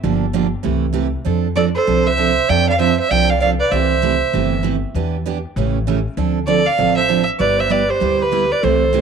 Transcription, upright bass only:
0.04 0.53 G1 medium
0.65 1.14 C2 medium
1.26 1.75 F2 medium
1.88 2.37 C2 medium
2.49 2.98 F2 medium
3.11 3.60 C2 medium
3.72 4.21 C2 medium
4.34 4.83 G1 medium
4.95 5.44 E2 medium
5.56 6.05 A1 medium
6.17 6.66 D2 medium
6.79 7.28 A1 medium
7.40 7.89 G1 medium
8.01 8.51 D2 medium
8.63 9.01 C2 medium

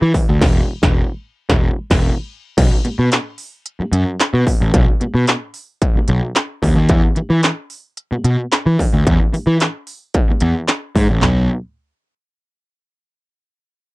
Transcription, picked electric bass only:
0.02 0.11 E3 loud
0.29 0.41 D2 loud
0.42 0.60 E1 loud
0.83 1.01 E1 loud
1.50 1.68 E1 medium
1.91 2.09 E1 loud
2.58 2.68 B1 loud
2.85 muted picked electric bass stroke soft
2.99 3.08 B2 loud
3.80 muted picked electric bass stroke soft
3.92 4.03 F#2 medium
4.34 4.43 B2 loud
4.61 4.71 A1 loud
4.74 4.84 B1 loud
5.01 muted picked electric bass stroke soft
5.14 5.24 B2 medium
5.96 muted picked electric bass stroke soft
6.09 6.19 B1 medium
6.63 6.74 D#2 medium
6.76 6.90 D#2 loud
6.90 7.00 E2 loud
7.17 muted picked electric bass stroke soft
7.30 7.40 E3 medium
8.12 muted picked electric bass stroke medium
8.24 8.35 B2 loud
8.66 8.76 E3 loud
8.93 9.03 D2 loud
9.07 9.17 E2 loud
9.34 muted picked electric bass stroke soft
9.47 9.57 E3 loud
10.29 muted picked electric bass stroke soft
10.42 10.52 E2 medium
10.96 11.06 G#2 medium
11.10 11.20 A1 medium
11.22 11.48 B1 medium

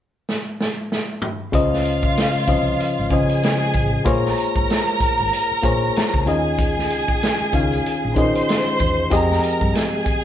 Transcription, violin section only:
1.53 3.08 F4 medium
1.53 3.08 F5 medium
3.11 4.04 G#4 medium
3.11 4.04 G#5 medium
4.06 6.23 A#4 medium
4.06 6.23 A#5 medium
6.27 8.13 G#4 medium
6.27 8.13 G#5 medium
8.17 9.10 C5 medium
8.17 9.10 C6 medium
9.12 9.74 A#4 medium
9.12 9.74 A#5 medium
9.74 10.24 G#4 medium
9.74 10.24 G#5 medium

